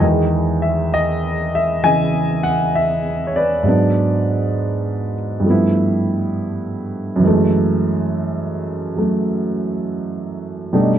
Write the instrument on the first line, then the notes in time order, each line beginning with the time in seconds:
grand piano
0.00 E2 D#3 E3 G#3
0.62 E5
0.94 D#5
1.55 E5
1.83 C#3 E3 D#5 G#5
2.43 F#5
2.75 E5
3.27 C#5
3.36 B4 D5
3.63 G#2 F#3
3.67 B3 D4
5.40 G2 F3
5.45 A3 B3
5.50 E4
7.16 F#2 E3
7.23 G#3 A3
8.96 F#3 A3
10.73 B2 G3 A3 D4 D#4